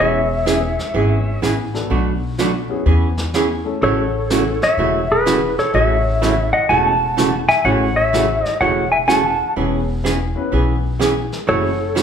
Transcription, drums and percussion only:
0.47 snare medium
0.47 hi-hat pedal medium
0.79 snare soft
0.95 brush sweep soft
1.43 snare medium
1.43 hi-hat pedal soft
1.75 snare soft
1.91 brush sweep medium
2.38 snare medium
2.38 hi-hat pedal medium
2.86 brush sweep soft
3.17 snare soft
3.34 snare medium
3.34 hi-hat pedal medium
3.82 brush sweep soft
4.30 snare medium
4.30 hi-hat pedal medium
4.62 snare soft
4.78 brush sweep soft
5.26 snare medium
5.26 hi-hat pedal medium
5.59 snare soft
5.75 brush sweep medium
6.23 snare medium
6.23 hi-hat pedal medium
6.70 brush sweep soft
7.18 snare medium
7.18 hi-hat pedal medium
7.50 snare soft
7.66 brush sweep soft
8.14 snare medium
8.14 hi-hat pedal medium
8.45 snare soft
8.61 brush sweep soft
9.09 snare medium
9.09 hi-hat pedal medium
9.57 brush sweep soft
10.05 snare medium
10.05 hi-hat pedal medium
10.53 brush sweep soft
11.01 snare medium
11.01 hi-hat pedal medium
11.32 snare soft
11.48 brush sweep medium
11.96 snare medium
11.96 hi-hat pedal medium

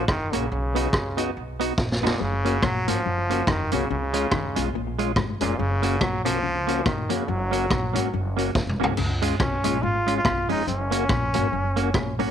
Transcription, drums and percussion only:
0.08 kick loud
0.08 cross-stick loud
0.33 closed hi-hat medium
0.76 closed hi-hat medium
0.93 kick loud
0.93 cross-stick loud
1.18 closed hi-hat medium
1.61 closed hi-hat medium
1.78 kick loud
1.78 snare medium
1.92 snare medium
2.07 snare loud
2.45 closed hi-hat medium
2.63 kick loud
2.63 cross-stick loud
2.88 closed hi-hat loud
3.30 closed hi-hat medium
3.47 kick loud
3.47 cross-stick loud
3.72 closed hi-hat medium
4.14 closed hi-hat medium
4.31 kick loud
4.31 cross-stick loud
4.56 closed hi-hat loud
4.99 closed hi-hat medium
5.16 kick loud
5.16 cross-stick loud
5.41 closed hi-hat medium
5.83 closed hi-hat medium
6.01 kick loud
6.01 cross-stick loud
6.26 closed hi-hat loud
6.68 closed hi-hat medium
6.86 kick loud
6.86 cross-stick loud
7.10 closed hi-hat medium
7.53 closed hi-hat medium
7.71 kick loud
7.71 cross-stick loud
7.95 closed hi-hat loud
8.38 closed hi-hat medium
8.55 kick loud
8.55 snare medium
8.69 mid tom medium
8.83 floor tom loud
8.97 crash medium
9.22 closed hi-hat medium
9.40 kick loud
9.40 cross-stick loud
9.64 closed hi-hat medium
10.08 closed hi-hat medium
10.25 kick loud
10.25 cross-stick loud
10.49 open hi-hat medium
10.67 hi-hat pedal medium
10.92 closed hi-hat medium
11.09 kick loud
11.09 cross-stick loud
11.34 closed hi-hat medium
11.77 closed hi-hat medium
11.94 kick loud
11.94 cross-stick loud
12.19 open hi-hat medium

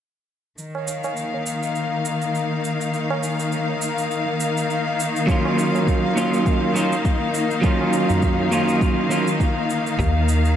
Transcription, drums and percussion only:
0.58 cabasa soft
0.75 tabla na medium
0.88 tabla tin soft
0.88 cabasa medium
1.04 tabla na soft
1.04 cabasa soft
1.17 cabasa soft
1.34 tabla tin soft
1.46 cabasa medium
1.63 cabasa soft
1.75 cabasa soft
2.05 cabasa medium
2.22 cabasa soft
2.35 cabasa soft
2.64 cabasa medium
2.81 cabasa soft
2.94 cabasa soft
3.10 tabla na medium
3.23 tabla tin soft
3.23 cabasa medium
3.39 cabasa soft
3.52 cabasa soft
3.69 tabla tin soft
3.82 cabasa medium
3.98 cabasa soft
4.11 cabasa soft
4.40 cabasa medium
4.57 cabasa soft
4.70 cabasa soft
5.00 cabasa medium
5.16 cabasa soft
5.29 kick medium
5.29 cabasa soft
5.45 tabla na medium
5.59 tabla tin soft
5.59 cabasa medium
5.75 tabla na medium
5.75 cabasa soft
5.87 kick loud
5.87 cabasa soft
6.04 tabla tin soft
6.17 cabasa medium
6.34 cabasa soft
6.46 kick loud
6.46 cabasa soft
6.76 cabasa medium
6.92 cabasa soft
7.05 kick loud
7.05 cabasa soft
7.34 cabasa medium
7.51 cabasa soft
7.64 kick loud
7.64 cabasa soft
7.81 tabla na medium
7.93 tabla tin soft
7.93 cabasa medium
8.10 tabla ge medium
8.10 cabasa soft
8.22 kick loud
8.22 cabasa soft
8.40 tabla tin medium
8.52 cabasa medium
8.69 cabasa soft
8.81 kick loud
8.81 cabasa soft
9.11 cabasa medium
9.28 cabasa soft
9.40 kick loud
9.40 cabasa soft
9.70 cabasa medium
9.87 cabasa soft
9.99 kick medium
9.99 cabasa soft
10.29 cabasa medium
10.45 cabasa soft

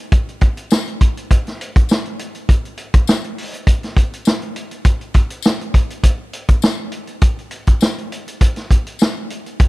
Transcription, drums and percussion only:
0.12 kick loud
0.12 closed hi-hat medium
0.29 closed hi-hat soft
0.41 kick medium
0.41 closed hi-hat medium
0.57 closed hi-hat medium
0.71 snare loud
0.71 tambourine medium
0.87 closed hi-hat soft
1.01 kick medium
1.01 closed hi-hat medium
1.17 closed hi-hat soft
1.31 kick medium
1.31 closed hi-hat medium
1.47 snare soft
1.47 closed hi-hat soft
1.61 closed hi-hat medium
1.76 kick loud
1.76 closed hi-hat medium
1.89 snare loud
1.89 tambourine medium
2.05 closed hi-hat soft
2.19 closed hi-hat medium
2.35 closed hi-hat soft
2.49 kick loud
2.49 closed hi-hat medium
2.65 closed hi-hat soft
2.77 closed hi-hat medium
2.94 kick medium
2.94 closed hi-hat medium
3.07 snare medium
3.07 tambourine medium
3.24 closed hi-hat soft
3.38 open hi-hat medium
3.54 closed hi-hat soft
3.67 kick medium
3.67 closed hi-hat medium
3.83 snare soft
3.83 closed hi-hat soft
3.97 kick medium
3.97 closed hi-hat medium
4.13 closed hi-hat soft
4.25 snare loud
4.25 tambourine medium
4.42 closed hi-hat soft
4.56 closed hi-hat medium
4.71 closed hi-hat soft
4.85 kick loud
4.85 closed hi-hat medium
5.01 closed hi-hat soft
5.14 kick medium
5.14 closed hi-hat medium
5.30 closed hi-hat medium
5.42 snare loud
5.42 tambourine medium
5.61 closed hi-hat soft
5.74 kick medium
5.74 closed hi-hat medium
5.90 closed hi-hat soft
6.03 kick medium
6.03 closed hi-hat medium
6.33 closed hi-hat medium
6.48 kick medium
6.48 closed hi-hat medium
6.62 snare loud
6.62 tambourine medium
6.92 closed hi-hat medium
7.07 closed hi-hat soft
7.21 kick loud
7.21 closed hi-hat medium
7.39 closed hi-hat soft
7.51 closed hi-hat medium
7.67 kick medium
7.67 closed hi-hat medium
7.81 snare medium
7.81 tambourine medium
7.98 closed hi-hat soft
8.12 closed hi-hat medium
8.28 closed hi-hat medium
8.41 kick medium
8.41 closed hi-hat loud
8.56 snare soft
8.56 closed hi-hat soft
8.71 kick medium
8.71 closed hi-hat medium
8.87 closed hi-hat medium
8.99 snare loud
8.99 tambourine medium
9.30 closed hi-hat medium
9.46 closed hi-hat soft
9.60 kick loud
9.60 closed hi-hat medium

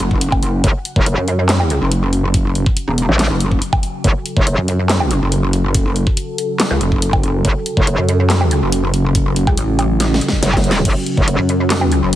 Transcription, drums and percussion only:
0.00 closed hi-hat medium
0.11 kick medium
0.21 closed hi-hat medium
0.32 kick loud
0.32 low woodblock medium
0.43 closed hi-hat medium
0.64 kick loud
0.64 closed hi-hat medium
0.85 closed hi-hat soft
0.96 kick loud
1.06 closed hi-hat medium
1.28 closed hi-hat medium
1.49 snare loud
1.49 clap medium
1.49 closed hi-hat medium
1.60 low woodblock medium
1.70 closed hi-hat medium
1.92 closed hi-hat medium
2.13 closed hi-hat medium
2.34 kick loud
2.34 closed hi-hat medium
2.55 closed hi-hat soft
2.66 kick loud
2.77 closed hi-hat medium
2.98 closed hi-hat medium
3.19 snare loud
3.19 clap medium
3.19 closed hi-hat medium
3.40 closed hi-hat medium
3.51 kick medium
3.62 closed hi-hat medium
3.73 kick loud
3.73 low woodblock medium
3.83 closed hi-hat medium
4.04 kick loud
4.04 closed hi-hat medium
4.26 closed hi-hat soft
4.37 kick loud
4.47 closed hi-hat medium
4.68 closed hi-hat soft
4.89 snare loud
4.89 clap medium
4.89 closed hi-hat medium
5.00 low woodblock medium
5.11 closed hi-hat soft
5.32 closed hi-hat medium
5.53 closed hi-hat medium
5.75 kick loud
5.75 closed hi-hat medium
5.96 closed hi-hat medium
6.07 kick loud
6.17 closed hi-hat medium
6.38 closed hi-hat medium
6.60 snare loud
6.60 clap medium
6.60 closed hi-hat medium
6.81 closed hi-hat medium
6.92 kick medium
7.02 closed hi-hat medium
7.13 kick loud
7.13 low woodblock medium
7.23 closed hi-hat medium
7.45 kick loud
7.45 closed hi-hat medium
7.66 closed hi-hat medium
7.77 kick loud
7.87 closed hi-hat medium
8.09 closed hi-hat medium
8.30 snare loud
8.30 clap medium
8.30 closed hi-hat medium
8.41 low woodblock medium
8.51 closed hi-hat medium
8.72 closed hi-hat medium
8.94 closed hi-hat medium
9.15 kick loud
9.15 closed hi-hat medium
9.36 closed hi-hat medium
9.47 kick loud
9.47 low woodblock medium
9.57 closed hi-hat medium
9.79 closed hi-hat medium
9.79 low woodblock medium
10.00 snare medium
10.00 closed hi-hat medium
10.14 snare medium
10.21 closed hi-hat medium
10.28 kick medium
10.28 snare medium
10.43 snare medium
10.43 closed hi-hat medium
10.54 kick loud
10.54 snare loud
10.54 low woodblock medium
10.64 closed hi-hat medium
10.71 snare loud
10.85 kick loud
10.85 closed hi-hat medium
10.85 crash medium
11.06 closed hi-hat medium
11.17 kick loud
11.28 closed hi-hat medium
11.49 closed hi-hat medium
11.70 snare loud
11.70 clap medium
11.70 closed hi-hat medium
11.81 low woodblock medium
11.92 closed hi-hat medium

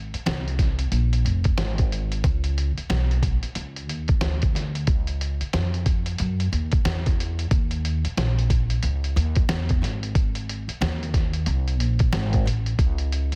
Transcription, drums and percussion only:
0.14 closed hi-hat soft
0.26 snare loud
0.26 closed hi-hat medium
0.48 closed hi-hat soft
0.59 kick medium
0.59 snare soft
0.59 closed hi-hat medium
0.79 closed hi-hat medium
0.92 closed hi-hat medium
1.13 closed hi-hat soft
1.26 closed hi-hat medium
1.44 kick medium
1.44 closed hi-hat medium
1.58 snare loud
1.58 closed hi-hat medium
1.78 kick medium
1.78 closed hi-hat medium
1.92 closed hi-hat medium
2.12 closed hi-hat medium
2.24 kick loud
2.24 closed hi-hat medium
2.44 closed hi-hat medium
2.58 closed hi-hat medium
2.78 closed hi-hat medium
2.90 snare loud
2.90 closed hi-hat medium
3.11 closed hi-hat soft
3.23 kick medium
3.23 closed hi-hat medium
3.43 closed hi-hat medium
3.55 closed hi-hat medium
3.76 closed hi-hat soft
3.89 closed hi-hat medium
4.08 kick medium
4.08 closed hi-hat medium
4.21 snare loud
4.21 closed hi-hat medium
4.42 kick medium
4.42 closed hi-hat medium
4.55 snare soft
4.55 closed hi-hat medium
4.75 closed hi-hat soft
4.87 kick loud
4.87 closed hi-hat medium
5.07 closed hi-hat medium
5.21 closed hi-hat medium
5.41 closed hi-hat medium
5.53 snare loud
5.53 closed hi-hat medium
5.74 closed hi-hat soft
5.86 kick medium
5.86 closed hi-hat medium
6.06 closed hi-hat medium
6.18 closed hi-hat medium
6.40 closed hi-hat soft
6.53 closed hi-hat medium
6.72 kick medium
6.72 closed hi-hat soft
6.85 snare loud
6.85 closed hi-hat loud
7.06 kick medium
7.06 closed hi-hat medium
7.20 closed hi-hat medium
7.39 closed hi-hat medium
7.51 kick loud
7.51 closed hi-hat medium
7.71 closed hi-hat medium
7.85 closed hi-hat medium
8.05 closed hi-hat medium
8.17 snare loud
8.17 closed hi-hat medium
8.39 closed hi-hat soft
8.50 kick loud
8.50 closed hi-hat medium
8.70 closed hi-hat medium
8.83 closed hi-hat medium
9.04 closed hi-hat soft
9.17 closed hi-hat medium
9.35 kick medium
9.35 closed hi-hat medium
9.49 snare loud
9.49 closed hi-hat medium
9.69 kick medium
9.69 closed hi-hat medium
9.83 snare soft
9.83 closed hi-hat medium
10.03 closed hi-hat medium
10.15 kick loud
10.15 closed hi-hat medium
10.35 closed hi-hat medium
10.49 closed hi-hat medium
10.69 closed hi-hat medium
10.82 snare loud
10.82 closed hi-hat medium
11.03 closed hi-hat soft
11.14 kick medium
11.14 snare soft
11.14 closed hi-hat medium
11.33 closed hi-hat medium
11.46 closed hi-hat medium
11.68 closed hi-hat soft
11.80 closed hi-hat medium
11.99 kick medium
11.99 closed hi-hat medium
12.13 snare loud
12.13 closed hi-hat medium
12.33 kick loud
12.33 closed hi-hat medium
12.47 closed hi-hat medium
12.66 closed hi-hat soft
12.79 kick loud
12.79 closed hi-hat medium
12.98 closed hi-hat medium
13.12 closed hi-hat medium
13.32 closed hi-hat soft

